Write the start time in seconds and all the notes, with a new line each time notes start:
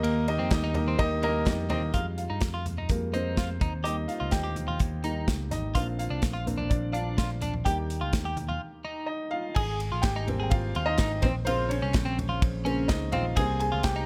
Already playing: D#3 A#3 D#4 G4 A#4 D#5
0.03 D#2 A#3, ride
0.28 A#3 D#4 G4 A#4 D#5, ride
0.39 F2 C4
0.51 D#2 A#3 D#4 G4 A#4 D#5, kick, snare, clap, ride
0.64 D#4
0.74 A#3 D#4 G4 A#4 D#5, floor tom, ride
0.88 C4
0.98 A#3 D#4 G4 A#4 D#5, kick, ride
1.23 A#3 D#4 G4 A#4 D#5, ride
1.46 F2 A#3 D#4 G4 A#4 D#5, kick, snare, clap, ride
1.70 D#2 A#3 C4 D#4 G4 A#4 D#5, floor tom, ride
1.93 F2 G3 G#3 F4 F5, kick, closed hi-hat
2.18 F4 F5, closed hi-hat
2.30 G2 D#4
2.41 F2, kick, snare, closed hi-hat
2.54 F4
2.66 closed hi-hat, floor tom
2.77 D#4, floor tom
2.89 F2 G3 G#3 A#3 F4 A#4, kick, closed hi-hat
3.13 C4 D#4 C5, closed hi-hat
3.37 F4, kick, snare, closed hi-hat
3.61 D#2 D#4, kick, closed hi-hat, floor tom
3.84 G3 A#3 D#4 G4 D#5, closed hi-hat
4.08 F4 F5, closed hi-hat
4.20 C#2 F4
4.31 D#2 G4 G5, kick, snare, closed hi-hat
4.44 G4
4.56 closed hi-hat, floor tom
4.68 F4, floor tom
4.80 D#2, kick, closed hi-hat
5.04 G3 A#3 D#4, closed hi-hat
5.28 C#2, kick, snare, closed hi-hat
5.51 G#1 D#4 D#5, snare, closed hi-hat, floor tom
5.75 A#1 A#3 C4 D4 F4 F5, kick, closed hi-hat
5.99 F4 F5, closed hi-hat
6.10 C2 D4
6.22 A#1, kick, snare, closed hi-hat
6.33 F4
6.46 A#3 C4 D4, closed hi-hat, floor tom
6.58 D4, floor tom
6.69 A#1 D4 D5, kick, closed hi-hat
6.93 D4 F4 F5, closed hi-hat
7.18 F4, kick, snare, closed hi-hat
7.42 D4, closed hi-hat, floor tom
7.54 floor tom
7.65 D#2 G3 A#3 D#4 G4 G5, kick, closed hi-hat
7.90 closed hi-hat
8.01 C#2 F4
8.13 D#2, kick, snare, closed hi-hat
8.25 G4
8.37 closed hi-hat, floor tom
8.49 F4, floor tom
8.85 D#4
9.06 D#4 D#5
9.31 F4 F5
9.55 G#1 G#4 G#5, kick, crash
9.80 ride
9.92 A#1 F4
10.02 G#1 G4 G5, kick, snare, clap, ride
10.16 D#4
10.27 G3 A#3 C4, floor tom, ride
10.40 G#4 G5
10.50 F4 F5, kick, ride
10.75 D#2 F4, ride
10.86 D#4 D#5
10.98 G#1 D#4, kick, snare, clap, ride
11.22 A#1 C4 C5, kick, snare, floor tom, ride
11.45 A#1 C#3 A#3 C4 F4 C5, ride
11.69 C#4 C#5, ride
11.82 C2 C#4
11.94 A#1, kick, snare, clap, ride
12.05 C4
12.19 floor tom, ride
12.29 F4
12.42 A#1, kick, ride
12.65 C#3 A#3 C4 C#4, ride
12.88 C#2 D#4 D#5, kick, snare, clap, ride
13.12 A#1 C4 F4 F5, floor tom, ride
13.36 C2 G3 A#3 C4 G#4 G#5, kick, ride
13.60 G#4 G#5, ride
13.72 C#2 F4
13.83 C2 G4 G5, kick, snare, clap, ride
13.96 D#4